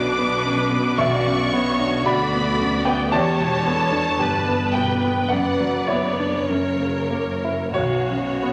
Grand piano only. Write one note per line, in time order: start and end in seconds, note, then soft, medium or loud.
0.00 0.95 B1 medium
0.00 0.45 F#2 soft
0.00 0.18 B3 medium
0.00 1.79 D4 medium
0.00 0.34 F#4 medium
0.00 2.07 D5 medium
0.00 0.94 F#5 medium
0.00 2.06 B5 medium
0.00 0.94 D6 medium
0.18 0.61 B3 medium
0.45 0.88 F#2 medium
0.70 1.14 B3 soft
0.98 3.09 B1 medium
0.98 2.02 E5 medium
0.98 2.02 C#6 medium
1.26 1.69 F#2 soft
1.53 1.95 B3 medium
1.79 2.22 D4 medium
2.06 2.49 F#4 medium
2.06 2.83 D5 medium
2.06 2.82 B5 medium
2.33 2.76 B3 soft
2.59 3.02 F#2 medium
2.85 3.13 B3 medium
2.85 3.11 B4 medium
2.85 3.11 G5 medium
3.12 5.27 E2 medium
3.12 4.71 D5 medium
3.12 4.71 A5 loud
3.40 3.82 B2 medium
3.66 4.09 B3 medium
3.91 4.36 D4 medium
4.19 4.64 G4 medium
4.48 4.92 B3 soft
4.73 5.20 B2 soft
4.73 5.27 B4 soft
4.73 5.26 G5 medium
5.04 5.31 B3 soft
5.29 6.44 F#2 medium
5.29 5.83 B4 soft
5.29 5.83 F#5 medium
5.60 6.06 F#3 soft
5.87 6.36 B3 soft
5.87 7.43 E4 soft
5.87 7.70 C#5 medium
6.19 6.48 D4 soft
6.49 7.72 F#2 medium
6.80 7.29 C#3 soft
7.10 7.62 A#3 soft
7.44 7.76 E4 soft
7.74 8.53 B1 medium
7.74 8.53 F#4 medium
7.74 8.53 C#5 medium
8.10 8.53 F#2 soft
8.43 8.53 B3 soft